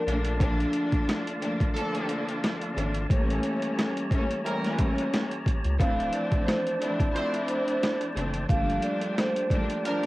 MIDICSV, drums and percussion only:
0, 0, Header, 1, 2, 480
1, 0, Start_track
1, 0, Key_signature, -1, "minor"
1, 0, Tempo, 674157
1, 288, Time_signature, 4, 2, 24, 8
1, 7163, End_track
2, 0, Start_track
2, 0, Title_t, "Drums"
2, 57, Note_on_c, 9, 42, 78
2, 128, Note_off_c, 9, 42, 0
2, 175, Note_on_c, 9, 42, 56
2, 246, Note_off_c, 9, 42, 0
2, 287, Note_on_c, 9, 36, 120
2, 291, Note_on_c, 9, 42, 89
2, 358, Note_off_c, 9, 36, 0
2, 363, Note_off_c, 9, 42, 0
2, 430, Note_on_c, 9, 42, 49
2, 501, Note_off_c, 9, 42, 0
2, 521, Note_on_c, 9, 42, 73
2, 592, Note_off_c, 9, 42, 0
2, 657, Note_on_c, 9, 42, 50
2, 658, Note_on_c, 9, 36, 90
2, 728, Note_off_c, 9, 42, 0
2, 729, Note_off_c, 9, 36, 0
2, 776, Note_on_c, 9, 38, 114
2, 776, Note_on_c, 9, 42, 95
2, 781, Note_on_c, 9, 37, 91
2, 847, Note_off_c, 9, 38, 0
2, 847, Note_off_c, 9, 42, 0
2, 852, Note_off_c, 9, 37, 0
2, 907, Note_on_c, 9, 42, 57
2, 978, Note_off_c, 9, 42, 0
2, 1013, Note_on_c, 9, 42, 69
2, 1084, Note_off_c, 9, 42, 0
2, 1142, Note_on_c, 9, 36, 91
2, 1146, Note_on_c, 9, 42, 58
2, 1213, Note_off_c, 9, 36, 0
2, 1217, Note_off_c, 9, 42, 0
2, 1256, Note_on_c, 9, 42, 94
2, 1328, Note_off_c, 9, 42, 0
2, 1386, Note_on_c, 9, 42, 58
2, 1458, Note_off_c, 9, 42, 0
2, 1488, Note_on_c, 9, 42, 87
2, 1559, Note_off_c, 9, 42, 0
2, 1627, Note_on_c, 9, 42, 54
2, 1698, Note_off_c, 9, 42, 0
2, 1736, Note_on_c, 9, 42, 81
2, 1737, Note_on_c, 9, 38, 114
2, 1742, Note_on_c, 9, 37, 90
2, 1807, Note_off_c, 9, 42, 0
2, 1808, Note_off_c, 9, 38, 0
2, 1813, Note_off_c, 9, 37, 0
2, 1862, Note_on_c, 9, 42, 47
2, 1933, Note_off_c, 9, 42, 0
2, 1978, Note_on_c, 9, 42, 79
2, 2049, Note_off_c, 9, 42, 0
2, 2096, Note_on_c, 9, 42, 59
2, 2167, Note_off_c, 9, 42, 0
2, 2207, Note_on_c, 9, 36, 122
2, 2212, Note_on_c, 9, 42, 85
2, 2278, Note_off_c, 9, 36, 0
2, 2283, Note_off_c, 9, 42, 0
2, 2351, Note_on_c, 9, 42, 49
2, 2422, Note_off_c, 9, 42, 0
2, 2442, Note_on_c, 9, 42, 73
2, 2513, Note_off_c, 9, 42, 0
2, 2578, Note_on_c, 9, 42, 50
2, 2649, Note_off_c, 9, 42, 0
2, 2696, Note_on_c, 9, 38, 119
2, 2696, Note_on_c, 9, 42, 91
2, 2701, Note_on_c, 9, 37, 94
2, 2767, Note_off_c, 9, 42, 0
2, 2768, Note_off_c, 9, 38, 0
2, 2772, Note_off_c, 9, 37, 0
2, 2826, Note_on_c, 9, 42, 58
2, 2897, Note_off_c, 9, 42, 0
2, 2926, Note_on_c, 9, 36, 92
2, 2933, Note_on_c, 9, 42, 70
2, 2997, Note_off_c, 9, 36, 0
2, 3004, Note_off_c, 9, 42, 0
2, 3066, Note_on_c, 9, 42, 57
2, 3137, Note_off_c, 9, 42, 0
2, 3177, Note_on_c, 9, 42, 94
2, 3248, Note_off_c, 9, 42, 0
2, 3306, Note_on_c, 9, 42, 55
2, 3308, Note_on_c, 9, 38, 37
2, 3378, Note_off_c, 9, 42, 0
2, 3379, Note_off_c, 9, 38, 0
2, 3407, Note_on_c, 9, 42, 87
2, 3410, Note_on_c, 9, 36, 97
2, 3478, Note_off_c, 9, 42, 0
2, 3481, Note_off_c, 9, 36, 0
2, 3547, Note_on_c, 9, 42, 52
2, 3618, Note_off_c, 9, 42, 0
2, 3657, Note_on_c, 9, 42, 81
2, 3658, Note_on_c, 9, 38, 113
2, 3663, Note_on_c, 9, 37, 90
2, 3728, Note_off_c, 9, 42, 0
2, 3729, Note_off_c, 9, 38, 0
2, 3734, Note_off_c, 9, 37, 0
2, 3783, Note_on_c, 9, 42, 48
2, 3854, Note_off_c, 9, 42, 0
2, 3888, Note_on_c, 9, 36, 96
2, 3900, Note_on_c, 9, 42, 79
2, 3959, Note_off_c, 9, 36, 0
2, 3971, Note_off_c, 9, 42, 0
2, 4019, Note_on_c, 9, 42, 58
2, 4090, Note_off_c, 9, 42, 0
2, 4128, Note_on_c, 9, 36, 124
2, 4133, Note_on_c, 9, 42, 89
2, 4199, Note_off_c, 9, 36, 0
2, 4205, Note_off_c, 9, 42, 0
2, 4272, Note_on_c, 9, 42, 48
2, 4343, Note_off_c, 9, 42, 0
2, 4362, Note_on_c, 9, 42, 75
2, 4434, Note_off_c, 9, 42, 0
2, 4498, Note_on_c, 9, 36, 91
2, 4498, Note_on_c, 9, 42, 49
2, 4569, Note_off_c, 9, 42, 0
2, 4570, Note_off_c, 9, 36, 0
2, 4616, Note_on_c, 9, 38, 120
2, 4616, Note_on_c, 9, 42, 92
2, 4621, Note_on_c, 9, 37, 91
2, 4687, Note_off_c, 9, 38, 0
2, 4687, Note_off_c, 9, 42, 0
2, 4692, Note_off_c, 9, 37, 0
2, 4747, Note_on_c, 9, 42, 55
2, 4818, Note_off_c, 9, 42, 0
2, 4853, Note_on_c, 9, 42, 69
2, 4925, Note_off_c, 9, 42, 0
2, 4982, Note_on_c, 9, 36, 97
2, 4985, Note_on_c, 9, 42, 58
2, 5053, Note_off_c, 9, 36, 0
2, 5056, Note_off_c, 9, 42, 0
2, 5096, Note_on_c, 9, 42, 91
2, 5168, Note_off_c, 9, 42, 0
2, 5225, Note_on_c, 9, 42, 56
2, 5297, Note_off_c, 9, 42, 0
2, 5327, Note_on_c, 9, 42, 88
2, 5398, Note_off_c, 9, 42, 0
2, 5467, Note_on_c, 9, 42, 53
2, 5538, Note_off_c, 9, 42, 0
2, 5576, Note_on_c, 9, 42, 79
2, 5578, Note_on_c, 9, 38, 113
2, 5583, Note_on_c, 9, 37, 91
2, 5648, Note_off_c, 9, 42, 0
2, 5649, Note_off_c, 9, 38, 0
2, 5654, Note_off_c, 9, 37, 0
2, 5703, Note_on_c, 9, 42, 46
2, 5774, Note_off_c, 9, 42, 0
2, 5818, Note_on_c, 9, 42, 78
2, 5889, Note_off_c, 9, 42, 0
2, 5936, Note_on_c, 9, 42, 58
2, 6007, Note_off_c, 9, 42, 0
2, 6047, Note_on_c, 9, 36, 121
2, 6052, Note_on_c, 9, 42, 88
2, 6118, Note_off_c, 9, 36, 0
2, 6123, Note_off_c, 9, 42, 0
2, 6192, Note_on_c, 9, 42, 46
2, 6263, Note_off_c, 9, 42, 0
2, 6282, Note_on_c, 9, 42, 71
2, 6353, Note_off_c, 9, 42, 0
2, 6418, Note_on_c, 9, 42, 50
2, 6489, Note_off_c, 9, 42, 0
2, 6536, Note_on_c, 9, 42, 95
2, 6537, Note_on_c, 9, 38, 118
2, 6542, Note_on_c, 9, 37, 95
2, 6608, Note_off_c, 9, 38, 0
2, 6608, Note_off_c, 9, 42, 0
2, 6613, Note_off_c, 9, 37, 0
2, 6666, Note_on_c, 9, 42, 59
2, 6737, Note_off_c, 9, 42, 0
2, 6766, Note_on_c, 9, 36, 98
2, 6772, Note_on_c, 9, 42, 66
2, 6837, Note_off_c, 9, 36, 0
2, 6844, Note_off_c, 9, 42, 0
2, 6905, Note_on_c, 9, 42, 60
2, 6976, Note_off_c, 9, 42, 0
2, 7016, Note_on_c, 9, 42, 92
2, 7087, Note_off_c, 9, 42, 0
2, 7163, End_track
0, 0, End_of_file